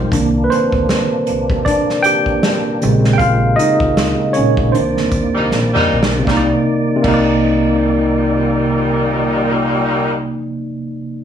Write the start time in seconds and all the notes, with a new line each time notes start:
Already playing: G3 G#3 C4 D#4 G4 C5
0.11 C2 A#2 C3 D#3 A#3 D4, kick, closed hi-hat
0.44 B4
0.50 C4 C5, closed hi-hat
0.72 D2, kick
0.89 snare, closed hi-hat
1.27 C2, closed hi-hat
1.50 C3, kick
1.65 D4 D5, kick, closed hi-hat
1.89 snare
2.03 G4 G5, closed hi-hat
2.26 kick
2.43 snare, closed hi-hat
2.81 A#1 C#3 G#3 C4, closed hi-hat
3.04 snare
3.13 G5
3.18 A#1 F4 F5, kick, closed hi-hat
3.56 D#4 D#5, closed hi-hat
3.80 C#2, kick
3.97 snare, closed hi-hat
4.33 C#4 C#5, closed hi-hat
4.38 A#1
4.57 A#2, kick
4.72 C2 D#3 A#3 C4 D4 C5 D5, closed hi-hat
4.97 D2, snare
5.11 D#2, kick, closed hi-hat
5.35 C2 A#2 G3 D#4
5.51 A#1, snare
5.73 A#2 G3 D#4, mid tom
5.92 B1
6.03 snare
6.19 C3
6.25 C2 A#2 C3 D#3 G3 A#3 D#4 D5, kick, snare
6.31 D#4
6.37 D5
6.96 C3
7.02 C2 A#2 G3 A#3 D#4, kick, crash
7.08 D#4
7.14 D5